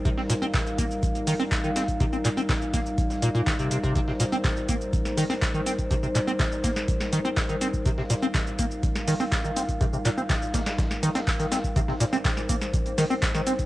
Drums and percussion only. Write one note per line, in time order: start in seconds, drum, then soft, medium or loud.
0.05 kick loud
0.05 closed hi-hat medium
0.05 shaker soft
0.18 snare soft
0.30 snare medium
0.30 closed hi-hat medium
0.30 open hi-hat loud
0.30 shaker medium
0.42 shaker soft
0.54 kick loud
0.54 snare loud
0.54 clap loud
0.54 closed hi-hat medium
0.54 shaker soft
0.67 shaker soft
0.78 kick medium
0.78 closed hi-hat medium
0.78 open hi-hat medium
0.78 shaker medium
0.91 shaker soft
1.03 kick loud
1.03 closed hi-hat medium
1.03 shaker soft
1.15 closed hi-hat soft
1.15 shaker soft
1.27 open hi-hat loud
1.27 open hi-hat medium
1.27 shaker medium
1.40 shaker soft
1.52 kick loud
1.52 snare loud
1.52 clap loud
1.52 closed hi-hat medium
1.52 shaker soft
1.64 shaker soft
1.76 snare loud
1.76 closed hi-hat medium
1.76 open hi-hat medium
1.76 shaker medium
1.88 kick medium
1.88 closed hi-hat soft
1.88 shaker soft
2.00 kick loud
2.00 closed hi-hat medium
2.00 shaker soft
2.13 shaker soft
2.25 clap medium
2.25 closed hi-hat medium
2.25 open hi-hat loud
2.25 shaker medium
2.37 shaker soft
2.49 kick loud
2.49 snare loud
2.49 clap loud
2.49 closed hi-hat medium
2.49 shaker soft
2.62 shaker soft
2.74 kick medium
2.74 snare soft
2.74 closed hi-hat medium
2.74 open hi-hat medium
2.74 shaker medium
2.86 shaker soft
2.98 kick loud
2.98 closed hi-hat medium
2.98 shaker soft
3.10 snare soft
3.10 shaker soft
3.22 closed hi-hat medium
3.22 open hi-hat loud
3.22 shaker medium
3.35 shaker soft
3.47 kick loud
3.47 snare loud
3.47 clap loud
3.47 closed hi-hat medium
3.47 shaker soft
3.59 closed hi-hat soft
3.59 shaker soft
3.71 closed hi-hat medium
3.71 open hi-hat medium
3.71 shaker medium
3.83 kick medium
3.83 shaker soft
3.96 kick loud
3.96 closed hi-hat medium
3.96 shaker soft
4.08 snare soft
4.20 snare medium
4.20 closed hi-hat medium
4.20 open hi-hat loud
4.20 shaker medium
4.32 shaker soft
4.44 kick loud
4.44 snare loud
4.44 clap loud
4.44 closed hi-hat medium
4.44 shaker soft
4.57 shaker soft
4.69 kick medium
4.69 closed hi-hat medium
4.69 open hi-hat medium
4.69 shaker medium
4.81 shaker soft
4.93 kick loud
4.93 closed hi-hat medium
4.93 shaker soft
5.05 snare medium
5.05 closed hi-hat soft
5.05 shaker soft
5.17 open hi-hat loud
5.17 open hi-hat medium
5.17 shaker medium
5.30 snare soft
5.30 shaker soft
5.42 kick loud
5.42 snare loud
5.42 clap loud
5.42 closed hi-hat medium
5.42 shaker soft
5.54 shaker soft
5.66 snare soft
5.66 closed hi-hat medium
5.66 open hi-hat medium
5.66 shaker medium
5.79 kick medium
5.79 closed hi-hat soft
5.79 shaker soft
5.91 kick loud
5.91 closed hi-hat medium
5.91 shaker soft
6.03 shaker soft
6.15 clap medium
6.15 closed hi-hat medium
6.15 open hi-hat loud
6.15 shaker medium
6.28 shaker soft
6.39 kick loud
6.39 snare loud
6.39 clap loud
6.39 closed hi-hat medium
6.39 shaker soft
6.52 shaker soft
6.64 kick medium
6.64 snare soft
6.64 closed hi-hat medium
6.64 open hi-hat medium
6.64 shaker medium
6.76 snare medium
6.76 shaker soft
6.88 kick loud
6.88 closed hi-hat medium
6.88 shaker soft
7.00 snare soft
7.00 snare medium
7.00 shaker soft
7.13 closed hi-hat medium
7.13 open hi-hat loud
7.13 shaker medium
7.25 shaker soft
7.37 kick loud
7.37 snare loud
7.37 clap loud
7.37 closed hi-hat medium
7.37 shaker soft
7.49 closed hi-hat soft
7.49 shaker soft
7.61 snare soft
7.61 closed hi-hat medium
7.61 open hi-hat medium
7.61 shaker medium
7.74 kick medium
7.74 shaker soft
7.86 kick loud
7.86 closed hi-hat medium
7.86 shaker soft
7.98 snare soft
8.10 snare medium
8.10 closed hi-hat medium
8.10 open hi-hat loud
8.10 shaker medium
8.23 shaker soft
8.35 kick loud
8.35 snare loud
8.35 clap loud
8.35 closed hi-hat medium
8.35 shaker soft
8.47 shaker soft
8.59 kick medium
8.59 closed hi-hat medium
8.59 open hi-hat medium
8.59 shaker medium
8.71 shaker soft
8.83 kick loud
8.83 closed hi-hat medium
8.83 shaker soft
8.96 snare medium
8.96 closed hi-hat soft
8.96 shaker soft
9.08 open hi-hat medium
9.08 open hi-hat loud
9.08 shaker medium
9.20 snare soft
9.20 shaker soft
9.32 kick loud
9.32 snare loud
9.32 clap loud
9.32 closed hi-hat medium
9.32 shaker soft
9.45 shaker soft
9.56 snare soft
9.56 closed hi-hat medium
9.56 open hi-hat medium
9.56 shaker medium
9.69 kick medium
9.69 closed hi-hat soft
9.69 shaker soft
9.81 kick loud
9.81 closed hi-hat medium
9.81 shaker soft
9.93 shaker soft
10.05 clap medium
10.05 closed hi-hat medium
10.05 open hi-hat loud
10.05 shaker medium
10.18 shaker soft
10.30 kick loud
10.30 snare loud
10.30 clap loud
10.30 closed hi-hat medium
10.30 shaker soft
10.42 shaker soft
10.54 kick medium
10.54 snare loud
10.54 closed hi-hat medium
10.54 open hi-hat medium
10.54 shaker medium
10.66 snare loud
10.66 snare medium
10.66 closed hi-hat medium
10.66 shaker soft
10.78 kick loud
10.78 snare loud
10.78 closed hi-hat medium
10.78 shaker soft
10.91 snare medium
10.91 shaker soft
11.03 snare soft
11.03 closed hi-hat medium
11.03 open hi-hat loud
11.03 shaker medium
11.15 snare loud
11.15 closed hi-hat medium
11.15 shaker soft
11.27 kick loud
11.27 clap loud
11.27 shaker soft
11.39 snare soft
11.39 closed hi-hat medium
11.39 shaker soft
11.52 snare loud
11.52 snare soft
11.52 closed hi-hat medium
11.52 open hi-hat medium
11.52 shaker medium
11.64 kick medium
11.64 shaker soft
11.76 kick loud
11.76 closed hi-hat medium
11.76 shaker soft
11.88 snare soft
12.00 snare medium
12.00 closed hi-hat medium
12.00 open hi-hat loud
12.00 shaker medium
12.13 snare soft
12.13 shaker soft
12.25 kick loud
12.25 snare loud
12.25 snare medium
12.25 clap loud
12.25 closed hi-hat medium
12.25 shaker soft
12.37 snare medium
12.37 shaker soft
12.49 kick medium
12.49 closed hi-hat medium
12.49 open hi-hat medium
12.49 shaker medium
12.61 snare medium
12.61 shaker soft
12.73 kick loud
12.73 closed hi-hat medium
12.73 shaker soft
12.86 closed hi-hat soft
12.86 shaker soft
12.98 snare medium
12.98 open hi-hat medium
12.98 open hi-hat loud
12.98 shaker medium
13.10 shaker soft
13.22 kick loud
13.22 snare loud
13.22 clap loud
13.22 closed hi-hat medium
13.22 shaker soft
13.35 snare medium
13.35 shaker soft
13.47 snare soft
13.47 closed hi-hat medium
13.47 open hi-hat medium
13.47 shaker medium
13.59 kick medium
13.59 closed hi-hat soft
13.59 shaker soft